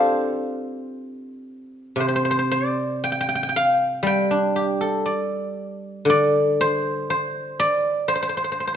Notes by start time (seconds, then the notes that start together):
Already playing: C4 D4 F4 G4 A4 C5 F5 G5
1.96 C3
2.00 C5
2.08 C5
2.16 C5
2.25 C5
2.31 C5
2.39 C5
2.52 D5
3.04 G5
3.12 G5
3.21 G5
3.29 G5
3.35 G5
3.43 G5
3.49 G5
3.56 F5
4.03 G3
4.07 G5
4.31 D4
4.56 G4
4.81 A4
5.06 D5
6.05 D3
6.10 D5
6.61 C5
7.10 C5
7.60 D5
8.08 C5
8.15 C5
8.23 C5
8.29 C5
8.37 C5
8.44 C5
8.52 C5
8.60 C5
8.67 C5